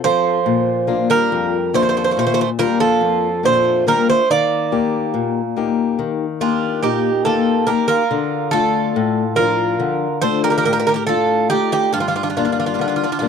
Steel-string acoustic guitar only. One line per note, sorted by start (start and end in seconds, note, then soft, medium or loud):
0.04 0.38 C4 soft
0.04 0.38 F4 soft
0.04 0.38 A4 medium
0.46 1.28 A#2 medium
0.87 1.56 A#3 medium
0.87 1.56 D4 soft
0.87 1.56 F4 medium
1.32 2.14 F2 medium
1.74 2.42 A#3 medium
1.74 2.42 D4 medium
1.74 2.42 F4 medium
2.17 2.99 A#2 medium
2.59 3.27 A#3 medium
2.59 3.27 D4 medium
2.59 3.27 F4 medium
3.01 3.83 F2 medium
3.43 4.11 A#2 soft
3.43 3.86 D4 soft
3.43 3.86 F4 medium
3.87 4.20 A#3 medium
3.87 4.21 D4 soft
3.87 4.21 F4 medium
4.30 5.12 D#3 medium
4.72 5.40 A#3 medium
4.72 5.40 D#4 soft
4.72 5.40 G4 medium
5.14 5.96 A#2 medium
5.56 6.24 A#3 soft
5.56 6.25 D#4 soft
5.56 6.25 G4 medium
5.99 6.81 D#3 medium
6.41 7.09 A#3 medium
6.41 7.10 G4 medium
6.83 7.66 A#2 medium
7.25 7.66 A#3 soft
7.25 7.66 D#4 soft
7.25 7.67 G4 medium
7.67 8.02 A#3 medium
7.67 8.02 D#4 soft
7.67 8.02 G4 soft
8.11 8.93 D3 medium
8.53 9.21 A3 medium
8.53 9.22 D4 medium
8.53 9.22 F4 medium
8.96 9.79 A2 medium
9.38 10.06 F3 soft
9.38 10.07 D4 soft
9.38 10.07 F4 medium
9.80 10.63 D3 medium
10.23 10.91 A3 medium
10.23 10.91 D4 medium
10.23 10.91 F4 medium
10.65 11.48 A2 medium
11.08 11.50 A3 soft
11.08 11.51 D4 soft
11.08 11.52 F4 medium
11.51 11.85 A3 medium
11.51 11.86 D4 soft
11.51 11.86 F4 medium
11.95 12.77 G2 medium
12.37 13.05 G3 medium
12.37 13.05 A#3 soft
12.37 13.05 D4 medium
12.79 13.28 D3 medium
13.21 13.28 G3 medium
13.21 13.28 A#3 soft
13.21 13.28 D4 medium